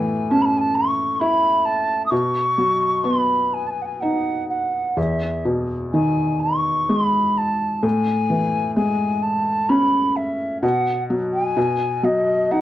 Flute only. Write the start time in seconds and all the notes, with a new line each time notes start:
Already playing: G#5
0.30 A5
0.42 A5 B5
0.58 G#5 A5
0.75 C#6
1.15 C#6
1.20 B5
1.65 A5
2.06 D#6
2.10 C#6
3.04 B5
3.54 G#5
3.67 G#5 A5
3.82 F#5 G#5
4.01 F#5
4.49 F#5
4.98 E5
5.93 G#5
6.40 C#6
6.90 B5
7.38 A5
7.83 G#5
8.76 G#5
9.23 A5
9.69 B5
10.16 E5
10.62 F#5
11.34 G#5
12.04 D#5
12.51 F#5